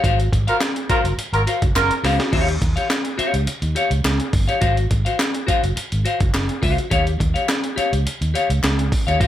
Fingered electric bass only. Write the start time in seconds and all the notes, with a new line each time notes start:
0.04 G#1
0.33 G#1
0.90 muted fingered electric bass stroke
1.04 F#1
1.18 muted fingered electric bass stroke
1.33 G#1
1.62 F#1
1.75 F#1
2.03 C#2
2.33 D#2
2.62 D#2
3.19 muted fingered electric bass stroke
3.34 C#2
3.47 muted fingered electric bass stroke
3.62 D#2
3.91 C#2
4.33 G1
4.62 G#1
4.91 G#1
5.48 muted fingered electric bass stroke
5.63 F#1
5.77 muted fingered electric bass stroke
5.92 G#1
6.20 F#1
6.34 F#1
6.62 C#2
6.91 D#2
7.20 D#2
7.77 muted fingered electric bass stroke
7.93 C#2
8.06 muted fingered electric bass stroke
8.21 D#2
8.50 C#2
9.07 D#2
9.21 G#1